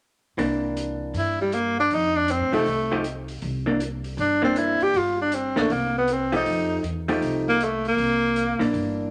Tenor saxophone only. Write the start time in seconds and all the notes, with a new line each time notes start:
1.17 E4
1.41 G3
1.54 A#3
1.80 D4
1.94 D#4
2.16 D4
2.31 C4
2.54 A3
4.20 D4
4.44 C4
4.58 E4
4.83 G4
4.97 F4
5.21 D4
5.35 C4
5.60 A3
5.72 A#3
5.98 B3
6.12 C4
6.36 D#4
7.49 A#3
7.64 A3
7.88 A#3